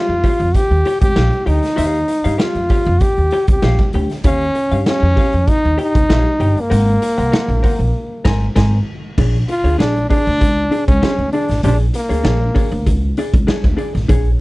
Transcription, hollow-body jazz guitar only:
Already playing: G4
0.09 muted hollow-body jazz guitar stroke
0.24 G4 C#5 F5
0.40 muted hollow-body jazz guitar stroke
0.55 muted hollow-body jazz guitar stroke
0.86 G4 C#5 G5
1.01 muted hollow-body jazz guitar stroke
1.16 G4 C#5 F5
1.32 muted hollow-body jazz guitar stroke
1.46 G4 C#5 G5
1.62 muted hollow-body jazz guitar stroke
1.76 G4 C#5 F5
2.08 muted hollow-body jazz guitar stroke
2.24 G4 C#5 F5
2.38 G4 C#5 F5
2.56 muted hollow-body jazz guitar stroke
2.70 G4 C#5 F5
2.86 muted hollow-body jazz guitar stroke
3.01 muted hollow-body jazz guitar stroke
3.32 G4 C#5 G5
3.49 muted hollow-body jazz guitar stroke
3.63 G4 C#5 F5
3.80 muted hollow-body jazz guitar stroke
3.94 G4 C#5 G5
4.11 muted hollow-body jazz guitar stroke
4.25 G4 C#5 F5
4.55 muted hollow-body jazz guitar stroke
4.72 G4 C#5 F5
4.86 G4 C#5 F5
5.03 muted hollow-body jazz guitar stroke
5.16 G4 C#5 F5
5.33 muted hollow-body jazz guitar stroke
5.47 muted hollow-body jazz guitar stroke
5.78 G4 C#5 G5
5.95 muted hollow-body jazz guitar stroke
6.09 G4 C#5 F5
6.26 muted hollow-body jazz guitar stroke
6.40 G4 C#5 G5
6.56 muted hollow-body jazz guitar stroke
6.70 A#4 C5 F#5
7.02 muted hollow-body jazz guitar stroke
7.18 A#4 C5 F#5
7.32 A#4 C5 F#5
7.49 muted hollow-body jazz guitar stroke
7.63 A#4 C5 F#5
7.79 muted hollow-body jazz guitar stroke
8.25 A#4 C5 G#5
8.55 A#4 C5 G#5
9.18 D4 G#4 C#5
9.49 muted hollow-body jazz guitar stroke
9.64 D4 G#4 C#5
9.78 D4 G#4 C#5
9.96 muted hollow-body jazz guitar stroke
10.10 D4 G#4 C#5
10.26 muted hollow-body jazz guitar stroke
10.41 muted hollow-body jazz guitar stroke
10.71 D4 G#4 D5
10.88 muted hollow-body jazz guitar stroke
11.02 D4 G#4 C#5
11.18 muted hollow-body jazz guitar stroke
11.33 D4 G#4 D5
11.50 muted hollow-body jazz guitar stroke
11.64 D4 G#4 C#5
11.93 muted hollow-body jazz guitar stroke
12.09 D4 G#4 C#5
12.24 D4 G#4 C#5
12.40 muted hollow-body jazz guitar stroke
12.54 D4 G#4 C#5
12.71 muted hollow-body jazz guitar stroke
12.86 muted hollow-body jazz guitar stroke
13.18 D4 G#4 D5
13.34 muted hollow-body jazz guitar stroke
13.47 D4 G#4 C#5
13.64 muted hollow-body jazz guitar stroke
13.77 D4 G#4 D5
13.94 muted hollow-body jazz guitar stroke
14.08 D4 G#4 C#5

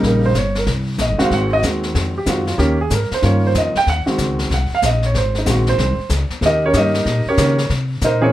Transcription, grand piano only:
Already playing: C#3 G3 A#3 D#4
0.07 A#4
0.26 C5
0.38 C#5
0.58 A#4
1.01 D#5
1.18 D#3 G#3 C4 F#4 F5
1.34 F#5
1.53 D#5
1.63 D#3 G#3 C4 F#4
2.18 G4
2.26 D#3 G#3 C4 F4 F#4
2.47 F4
2.58 D#3 A#3 C#4 G4
2.81 G#4
2.90 A4
2.95 A#4
3.14 C5
3.22 D#3 A#3 C#4 F4 C#5
3.47 C5
3.58 D#5
3.77 G5
3.90 F#5
4.06 D#3 G#3 C4 F#4
4.54 F#5
4.75 F5
4.86 D#5
5.06 C#5
5.17 C5
5.38 D#4
5.45 D#3 G#3 C4 F#4
5.50 F#4
5.69 C5
6.46 D#4 G4 A#4 D#5
6.66 C#4 G4 A#4 C#5
6.73 D#3 A#3 C#4 G4 D#5
6.78 D#4 G4 A#4
7.29 C#4 G4 A#4 C#5
7.38 D#3 A#3 C#4 G4
8.04 D#4 A#4 C5 D#5
8.21 E3 A#3 C4 C#4 G#4 C#5

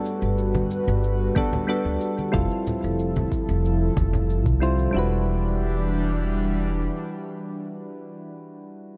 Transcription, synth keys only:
Already playing: G3 B3 D4 F#4 A4
1.35 G3 B3 D4 F#4 A4
1.67 G3 B3 D4 F#4 A4
2.32 G3 C4 E4 F4 A4
4.60 G3 C4 E4 F4 C5
4.91 G3 D4 E4
4.97 F#4 B4

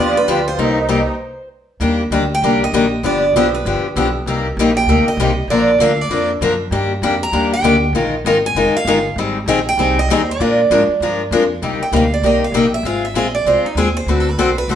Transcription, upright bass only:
Already playing: D#2
0.28 D2
0.57 C2
1.80 D#2
2.11 D2
2.42 C2
2.72 A#1
3.03 G1
3.34 B1
3.65 G1
3.82 muted upright bass stroke
3.96 B1
4.26 C2
4.57 A#1
4.86 D2
5.17 C2
5.48 A#1
5.78 D2
6.09 F2
6.41 F#2
6.71 G2
7.02 F2
7.32 D#2
7.63 D2
7.93 A#1
8.25 G#1
8.55 F1
8.85 G1
9.16 G#1
9.46 A#1
9.77 C2
10.08 D#2
10.40 A#2
10.70 G#2
10.88 muted upright bass stroke
11.00 G2
11.31 F2
11.62 C2
11.81 muted upright bass stroke
11.92 D2
12.22 C2
12.52 A#1
12.83 G#1
13.14 A#1
13.45 C2
13.63 muted upright bass stroke
13.75 D#2
14.06 D2
14.38 B1
14.68 C2

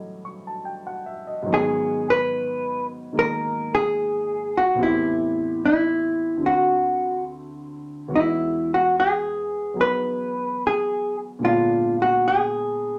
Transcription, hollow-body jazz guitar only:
1.54 G#4
2.10 B4
3.19 A#4
3.75 G#4
4.57 F#4
4.83 E4
5.65 E4
6.46 F#4
8.16 E4
8.74 F#4
9.00 G#4
9.81 B4
10.67 G#4
11.45 F4
12.02 F#4
12.28 G#4

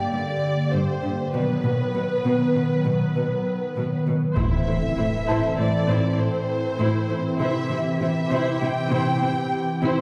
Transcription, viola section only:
4.37 E4 C5
4.67 E4 C5
4.97 E4 C5
5.27 E4 C5
5.58 E4 C5
5.88 E4 C5
6.18 E4 C5
6.79 E4 C5
7.09 E4 C5
7.40 E4 C5
7.70 E4 C5
8.01 E4 C5
8.32 E4 C5
8.61 E4 C5
8.92 E4 C5
9.22 E4 C5
9.83 E4 C5

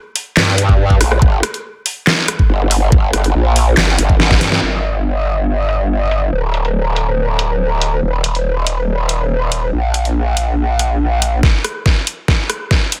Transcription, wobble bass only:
0.37 G2
1.01 A#1
1.22 G1
2.50 G1
2.92 G1
3.13 G1
3.35 A#1
3.77 G1
3.99 G1
4.41 G2
4.62 G1
6.33 D1
8.03 D#1
9.73 A#1

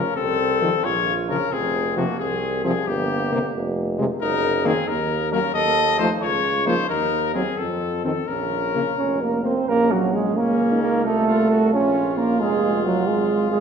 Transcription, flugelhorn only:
Already playing: C#4
0.17 C4
0.84 F4
1.29 C#4
1.52 C4
1.98 A#3
2.20 C4
2.65 C4
2.88 A#3
4.21 D#4
4.66 C4
4.88 D#4
5.32 C#4
5.54 A4
5.98 D#4
6.21 F4
6.66 D#4
6.89 D#4
7.35 C4
7.58 C4
8.04 C4
8.28 C#4
8.98 C#5
9.22 A#4
9.45 C5
9.69 A#4
9.91 F#4
10.14 G#4
10.37 A#4
10.83 A#4
11.06 A4
11.73 C#5
12.18 A#4
12.41 G#4
12.85 F#4
13.08 G#4
13.51 G#4

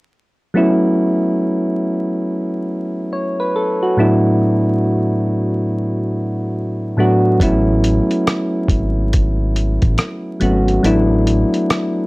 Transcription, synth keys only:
0.54 F#3 A3 B3 C#4 E4
3.13 C#5
3.40 B4
3.56 A4
3.83 F#4
3.97 A2 F#3 A3 B3 D4 E4
6.97 A2 F#3 A3 B3 D4 F#4
7.40 F#3 A3 B3 C#4 E4
10.40 F#3 A3 B3 C#4 F#4
10.83 F#3 A3 B3 D4 E4

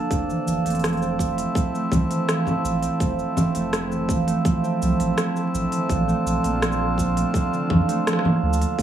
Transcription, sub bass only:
0.11 F1
0.47 F1
0.65 F1
1.92 C2
2.64 A1
3.01 F1
3.37 F1
3.55 F1
4.82 C2
5.00 A1
5.54 A1
5.90 A#1
6.26 A#1
6.44 A#1
7.70 F2
8.42 D2
8.79 A#1

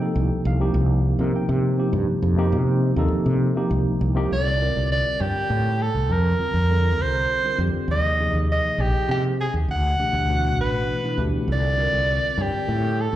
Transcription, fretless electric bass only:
0.16 C2
0.45 C2
0.74 C2
1.19 C3
1.49 C3
1.93 G2
2.08 muted fretless electric bass stroke
2.23 F2
2.52 C3
2.96 D#2
3.12 muted fretless electric bass stroke
3.26 C3
3.71 C2
4.01 C2
4.31 C2
4.76 C2
5.20 G2
5.35 muted fretless electric bass stroke
5.50 A2
5.94 C2
6.10 F2
6.39 muted fretless electric bass stroke
6.54 F2
6.99 C2
7.58 F2
7.73 muted fretless electric bass stroke
7.88 D#2
8.33 D#2
8.78 A#1
8.94 muted fretless electric bass stroke
9.09 C3
9.54 D#2
9.68 D2
9.99 muted fretless electric bass stroke
10.13 D2
10.58 A1
11.18 D2
11.33 muted fretless electric bass stroke
11.48 C2
11.93 C2
12.38 G2
12.53 muted fretless electric bass stroke
12.68 A2

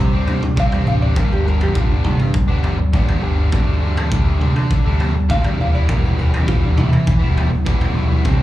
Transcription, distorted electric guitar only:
Already playing: C3
0.13 G3 C4 D4
0.42 muted distorted electric guitar stroke
0.56 C3 G3 C4 D4
0.86 C3 G3 C4 D4
1.01 G3 C4 D4
1.16 G2 D3 G3 B3 D4
1.45 D3 G3 B3 D4
1.60 G3 B3 D4
1.74 G2 D3 G3 B3 D4
2.04 D3 G3 B3 D4
2.19 muted distorted electric guitar stroke
2.48 G3 B3 D4
2.78 muted distorted electric guitar stroke
2.92 G2 D3 G3 B3 D4
3.21 D3 G3 B3 D4
3.36 G3 B3 D4
3.51 D3 G3 A3 D4
3.80 D3 G3 A3 D4
3.96 G3 A3 D4
4.10 D3 G3 A3 D4
4.40 D3 G3 A3 D4
4.55 muted distorted electric guitar stroke
4.85 G3 A3 D4
5.15 muted distorted electric guitar stroke
5.29 D3 G3 A3 D4
5.58 E3 G3 B3 E4
5.73 G3 B3 E4
5.87 E3 G3 B3 E4
6.18 E3 G3 B3 E4
6.32 G3 B3 E4
6.47 E3 G3 B3 E4
6.77 E3 G3 B3 E4
6.92 muted distorted electric guitar stroke
7.20 G3 B3 E4
7.50 muted distorted electric guitar stroke
7.65 E3 G3 B3 E4
7.94 E3 G3 B3 E4
8.10 G3 B3 E4
8.24 C3 G3 C4 D4

